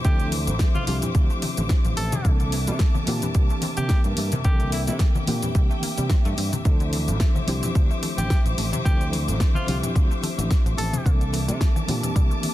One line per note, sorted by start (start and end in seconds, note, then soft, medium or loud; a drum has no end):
0.00 0.84 F3 medium
0.00 2.21 C5 medium
0.00 2.21 E5 medium
0.00 6.61 D6 medium
0.04 0.49 D2 loud
0.04 0.11 C3 medium
0.04 0.84 C4 medium
0.04 0.84 D4 medium
0.04 0.85 E4 medium
0.04 0.29 G4 loud
0.04 0.85 A4 medium
0.04 kick loud
0.04 closed hi-hat medium
0.04 cabasa medium
0.04 shaker medium
0.20 0.32 D3 medium
0.20 closed hi-hat soft
0.20 shaker soft
0.32 0.42 E3 loud
0.32 open hi-hat loud
0.32 cabasa medium
0.47 0.57 A1 medium
0.47 0.55 F3 medium
0.47 closed hi-hat medium
0.47 cabasa soft
0.47 shaker medium
0.59 0.66 A3 medium
0.59 kick loud
0.59 snare loud
0.59 closed hi-hat medium
0.59 cabasa medium
0.59 shaker medium
0.75 0.87 C3 medium
0.75 0.83 F4 medium
0.75 high conga loud
0.75 shaker soft
0.87 0.99 C2 medium
0.87 0.97 D3 loud
0.87 2.22 F3 medium
0.87 2.22 C4 medium
0.87 2.22 D4 medium
0.87 2.22 E4 medium
0.87 0.97 F4 medium
0.87 2.23 G4 loud
0.87 open hi-hat loud
0.87 cabasa loud
1.02 1.10 E3 medium
1.02 closed hi-hat medium
1.02 low conga medium
1.02 cabasa soft
1.02 shaker medium
1.15 1.27 D2 medium
1.15 1.21 F3 medium
1.15 kick loud
1.15 closed hi-hat medium
1.15 cabasa medium
1.15 shaker medium
1.30 1.42 A3 medium
1.30 cabasa soft
1.30 shaker soft
1.42 1.52 C3 loud
1.42 open hi-hat loud
1.42 high conga medium
1.42 cabasa loud
1.57 1.68 A1 medium
1.57 1.66 D3 medium
1.57 closed hi-hat medium
1.57 cabasa soft
1.57 shaker medium
1.69 1.76 E3 medium
1.69 kick loud
1.69 snare loud
1.69 closed hi-hat medium
1.69 cabasa soft
1.69 shaker medium
1.85 1.95 A1 medium
1.85 1.93 F3 medium
1.85 closed hi-hat soft
1.85 cabasa soft
1.85 shaker soft
1.97 2.10 A1 medium
1.97 2.07 A3 medium
1.97 2.31 A4 loud
1.97 open hi-hat loud
1.97 cabasa medium
2.12 2.21 C3 loud
2.12 closed hi-hat medium
2.12 high conga loud
2.12 low conga medium
2.12 cabasa soft
2.12 shaker medium
2.24 2.69 C2 loud
2.24 2.31 C3 medium
2.24 3.04 E3 medium
2.24 3.04 A#3 medium
2.24 6.61 A#3 medium
2.24 3.04 C4 medium
2.24 3.05 D4 medium
2.24 3.05 A4 medium
2.24 12.54 E5 medium
2.24 4.43 A5 medium
2.24 kick loud
2.24 closed hi-hat medium
2.24 cabasa soft
2.24 shaker medium
2.40 2.52 D3 medium
2.40 closed hi-hat soft
2.40 shaker soft
2.52 2.62 E3 loud
2.52 open hi-hat loud
2.52 cabasa medium
2.67 2.77 C3 loud
2.67 2.76 G3 medium
2.67 closed hi-hat medium
2.67 cabasa soft
2.67 shaker medium
2.79 2.86 A3 medium
2.79 kick loud
2.79 snare loud
2.79 closed hi-hat medium
2.79 cabasa medium
2.79 shaker medium
2.95 3.07 C3 medium
2.95 high conga loud
2.95 shaker soft
3.06 3.19 A#2 medium
3.06 3.17 D3 loud
3.06 4.42 E3 medium
3.06 4.42 A#3 medium
3.06 4.42 C4 medium
3.06 4.42 D4 medium
3.06 4.43 G4 loud
3.06 open hi-hat loud
3.06 cabasa medium
3.22 3.31 E3 medium
3.22 closed hi-hat medium
3.22 low conga medium
3.22 cabasa soft
3.22 shaker medium
3.34 3.47 C2 medium
3.34 3.41 G3 medium
3.34 kick loud
3.34 closed hi-hat medium
3.34 cabasa medium
3.34 shaker medium
3.49 3.62 A3 medium
3.49 cabasa soft
3.49 shaker soft
3.62 3.72 C3 loud
3.62 open hi-hat loud
3.62 high conga medium
3.62 cabasa medium
3.77 3.87 C3 medium
3.77 3.86 D3 medium
3.77 4.01 G4 loud
3.77 closed hi-hat medium
3.77 cabasa soft
3.77 shaker medium
3.89 3.96 E3 medium
3.89 kick loud
3.89 snare loud
3.89 closed hi-hat medium
3.89 cabasa medium
3.89 shaker medium
4.04 4.15 G2 medium
4.04 4.13 G3 medium
4.04 closed hi-hat soft
4.04 cabasa soft
4.04 shaker soft
4.17 4.29 G2 medium
4.17 4.27 A3 medium
4.17 open hi-hat loud
4.17 cabasa medium
4.32 4.41 C3 loud
4.32 closed hi-hat medium
4.32 high conga medium
4.32 low conga medium
4.32 cabasa soft
4.32 shaker medium
4.44 4.89 C2 loud
4.44 4.51 C3 medium
4.44 5.24 E3 medium
4.44 5.24 A#3 medium
4.44 5.25 C4 medium
4.44 5.25 D4 medium
4.44 4.69 G4 medium
4.44 5.25 A4 medium
4.44 6.63 G5 medium
4.44 kick loud
4.44 closed hi-hat medium
4.44 cabasa medium
4.44 shaker medium
4.60 4.72 D3 medium
4.60 closed hi-hat soft
4.60 cabasa soft
4.60 shaker soft
4.72 4.82 E3 loud
4.72 4.82 E4 medium
4.72 open hi-hat loud
4.72 cabasa medium
4.87 4.97 C3 medium
4.87 4.96 G3 medium
4.87 4.96 E4 medium
4.87 closed hi-hat soft
4.87 cabasa soft
4.87 shaker medium
4.99 5.06 A3 medium
4.99 kick loud
4.99 snare loud
4.99 closed hi-hat medium
4.99 cabasa medium
4.99 shaker medium
5.15 5.27 C3 medium
5.15 high conga loud
5.15 shaker soft
5.27 5.40 A#2 medium
5.27 5.37 D3 loud
5.27 6.62 E3 medium
5.27 6.62 A#3 medium
5.27 6.62 C4 medium
5.27 6.63 D4 medium
5.27 6.63 G4 loud
5.27 open hi-hat loud
5.27 cabasa medium
5.42 5.51 E3 medium
5.42 closed hi-hat medium
5.42 low conga medium
5.42 cabasa soft
5.42 shaker medium
5.55 5.67 C2 medium
5.55 5.61 G3 medium
5.55 kick loud
5.55 closed hi-hat medium
5.55 cabasa soft
5.55 shaker medium
5.70 5.82 A3 medium
5.70 cabasa soft
5.70 shaker soft
5.82 5.92 A#3 medium
5.82 open hi-hat loud
5.82 high conga medium
5.82 cabasa loud
5.98 6.08 C3 medium
5.98 6.06 G3 medium
5.98 closed hi-hat medium
5.98 cabasa soft
5.98 shaker medium
6.10 6.16 C4 medium
6.10 kick loud
6.10 snare loud
6.10 closed hi-hat medium
6.10 cabasa soft
6.10 shaker medium
6.25 6.35 G2 medium
6.25 6.37 A3 loud
6.25 closed hi-hat soft
6.25 cabasa soft
6.25 shaker soft
6.37 6.50 G2 medium
6.37 6.48 C4 medium
6.37 open hi-hat loud
6.37 cabasa medium
6.52 6.61 C3 medium
6.52 closed hi-hat medium
6.52 high conga medium
6.52 low conga medium
6.52 cabasa soft
6.52 shaker medium
6.65 7.09 D2 loud
6.65 6.71 C3 medium
6.65 7.45 F3 medium
6.65 7.45 C4 medium
6.65 7.45 D4 medium
6.65 7.45 E4 medium
6.65 7.46 A4 medium
6.65 11.02 C5 medium
6.65 11.02 D6 medium
6.65 kick loud
6.65 closed hi-hat medium
6.65 cabasa medium
6.65 shaker medium
6.80 6.92 D3 medium
6.80 closed hi-hat soft
6.80 shaker soft
6.93 7.03 E3 loud
6.93 open hi-hat loud
6.93 cabasa medium
7.08 7.18 A1 medium
7.08 7.16 F3 medium
7.08 closed hi-hat soft
7.08 cabasa soft
7.08 shaker medium
7.20 7.26 A3 medium
7.20 kick loud
7.20 snare loud
7.20 closed hi-hat medium
7.20 cabasa medium
7.20 shaker medium
7.35 7.47 C3 medium
7.35 high conga medium
7.35 shaker soft
7.47 7.60 C2 medium
7.47 7.58 D3 loud
7.47 8.82 F3 medium
7.47 8.82 C4 medium
7.47 8.83 D4 medium
7.47 8.83 E4 medium
7.47 8.83 G4 loud
7.47 open hi-hat loud
7.47 cabasa medium
7.63 7.71 E3 medium
7.63 closed hi-hat medium
7.63 low conga medium
7.63 cabasa soft
7.63 shaker medium
7.75 7.87 D2 medium
7.75 7.81 F3 medium
7.75 kick loud
7.75 closed hi-hat medium
7.75 cabasa soft
7.75 shaker medium
7.90 8.02 A3 medium
7.90 cabasa soft
7.90 shaker soft
8.03 8.17 A3 medium
8.03 open hi-hat loud
8.03 high conga medium
8.03 cabasa medium
8.18 8.28 A1 medium
8.18 8.26 D3 medium
8.18 8.41 G4 loud
8.18 closed hi-hat medium
8.18 cabasa soft
8.18 shaker medium
8.30 8.36 E3 medium
8.30 kick loud
8.30 snare loud
8.30 closed hi-hat medium
8.30 cabasa medium
8.30 shaker medium
8.45 8.55 A1 medium
8.45 8.54 F3 medium
8.45 closed hi-hat soft
8.45 cabasa soft
8.45 shaker soft
8.58 8.70 A1 medium
8.58 8.68 A3 medium
8.58 open hi-hat loud
8.58 cabasa medium
8.72 8.81 C3 loud
8.72 closed hi-hat soft
8.72 high conga medium
8.72 low conga medium
8.72 cabasa soft
8.72 shaker medium
8.85 9.30 D2 loud
8.85 8.91 C3 medium
8.85 9.65 F3 medium
8.85 9.65 C4 medium
8.85 9.65 D4 medium
8.85 9.65 E4 medium
8.85 9.09 G4 loud
8.85 9.66 A4 medium
8.85 kick loud
8.85 closed hi-hat medium
8.85 cabasa soft
8.85 shaker medium
9.00 9.12 D3 medium
9.00 closed hi-hat soft
9.00 shaker soft
9.12 9.22 E3 loud
9.12 open hi-hat loud
9.12 cabasa loud
9.27 9.38 A1 medium
9.27 9.36 F3 medium
9.27 closed hi-hat medium
9.27 cabasa soft
9.27 shaker medium
9.40 9.46 A3 medium
9.40 kick loud
9.40 snare loud
9.40 closed hi-hat medium
9.40 cabasa medium
9.40 shaker medium
9.54 9.67 C3 medium
9.54 9.63 F4 medium
9.54 high conga medium
9.54 shaker soft
9.67 9.80 C2 medium
9.67 9.77 D3 loud
9.67 11.02 F3 medium
9.67 11.02 C4 medium
9.67 11.03 D4 medium
9.67 11.03 E4 medium
9.67 9.78 F4 medium
9.67 11.03 G4 loud
9.67 open hi-hat loud
9.67 cabasa medium
9.83 9.91 E3 medium
9.83 closed hi-hat medium
9.83 low conga medium
9.83 cabasa soft
9.83 shaker medium
9.95 10.08 D2 medium
9.95 10.01 F3 medium
9.95 kick loud
9.95 closed hi-hat medium
9.95 cabasa medium
9.95 shaker medium
10.11 10.22 A3 medium
10.11 cabasa soft
10.11 shaker soft
10.22 10.37 A3 medium
10.22 open hi-hat loud
10.22 high conga medium
10.22 cabasa medium
10.38 10.48 A1 medium
10.38 10.46 D3 medium
10.38 closed hi-hat medium
10.38 cabasa soft
10.38 shaker medium
10.51 10.56 E3 medium
10.51 kick loud
10.51 snare loud
10.51 closed hi-hat medium
10.51 cabasa medium
10.51 shaker medium
10.66 10.76 A1 medium
10.66 10.74 F3 medium
10.66 closed hi-hat soft
10.66 cabasa soft
10.66 shaker soft
10.78 10.90 A1 medium
10.78 10.88 A3 medium
10.78 11.12 A4 loud
10.78 open hi-hat loud
10.78 cabasa loud
10.93 11.01 C3 loud
10.93 closed hi-hat medium
10.93 high conga medium
10.93 low conga medium
10.93 cabasa soft
10.93 shaker medium
11.05 11.50 C2 loud
11.05 11.11 C3 medium
11.05 11.85 E3 medium
11.05 11.85 A#3 medium
11.05 12.54 A#3 medium
11.05 11.85 C4 medium
11.05 11.86 D4 medium
11.05 11.86 A4 medium
11.05 12.54 A5 medium
11.05 12.54 D6 medium
11.05 kick loud
11.05 closed hi-hat medium
11.05 cabasa medium
11.05 shaker medium
11.21 11.33 D3 medium
11.21 closed hi-hat soft
11.21 shaker soft
11.33 11.43 E3 loud
11.33 open hi-hat loud
11.33 cabasa loud
11.48 11.58 C3 loud
11.48 11.56 G3 medium
11.48 closed hi-hat medium
11.48 cabasa soft
11.48 shaker medium
11.60 11.66 A3 medium
11.60 kick loud
11.60 snare loud
11.60 closed hi-hat medium
11.60 cabasa medium
11.60 shaker medium
11.76 11.88 C3 medium
11.76 high conga loud
11.76 shaker soft
11.87 12.00 A#2 medium
11.87 11.98 D3 loud
11.87 12.54 E3 medium
11.87 12.54 A#3 medium
11.87 12.54 C4 medium
11.87 12.54 D4 medium
11.87 12.54 G4 loud
11.87 open hi-hat loud
11.87 cabasa medium
12.03 12.11 E3 medium
12.03 closed hi-hat medium
12.03 low conga medium
12.03 cabasa soft
12.03 shaker medium
12.15 12.28 C2 medium
12.15 12.22 G3 medium
12.15 kick loud
12.15 closed hi-hat medium
12.15 cabasa medium
12.15 shaker medium
12.31 12.42 A3 medium
12.31 cabasa soft
12.31 shaker soft
12.43 12.54 A3 medium
12.43 open hi-hat loud
12.43 high conga medium
12.43 cabasa loud